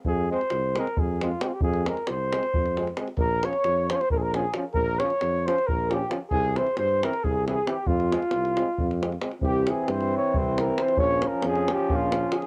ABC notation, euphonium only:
X:1
M:7/8
L:1/8
Q:1/4=134
K:Fm
V:1 name="Euphonium"
z C z C z C C | z C z C z C C | z D z D z D D | z D z D z D D |
z C z C z C C | z C z C z C C | C6- C | D6- D |]